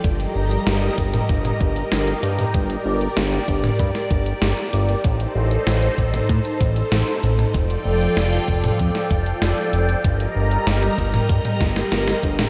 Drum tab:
HH |xx-xxxxxxxxxxxxx|xx-xxxxxxxxxxxxx|xx-xxxxxxxxxxxxx|xx-xxxxxxxxxxxxx|
SD |----o-------o---|----o----o--o---|----o-------o---|----o----o--o---|
T2 |-------o-o-----o|-------o--------|-------o-------o|-------o--------|
BD |o-----o-o-o-----|o-----o-o-o-----|o-----o-o-o-----|o-----o-o-o-----|

HH |xx-xxxxxxxxxxxxx|
SD |----oo----oooo-o|
T2 |-------o-o-----o|
BD |o-----o-o-o---o-|